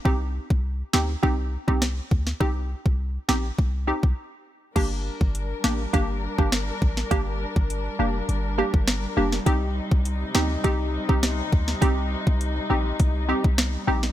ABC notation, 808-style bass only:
X:1
M:4/4
L:1/16
Q:1/4=102
K:Gm
V:1 name="808-style bass" clef=bass
C,,3 C,,3 D,,2 C,,3 C,,3 D,,2 | C,,3 C,,3 B,,,2 C,,3 C,, z4 | G,,,3 G,,,3 A,,,2 G,,,3 G,,,3 A,,,2 | G,,,3 G,,,3 F,,,2 G,,,3 G,,,3 F,,,2 |
C,,3 C,,3 D,,2 C,,3 C,,3 D,,2 | C,,3 C,,3 B,,,2 C,,3 C,,3 B,,,2 |]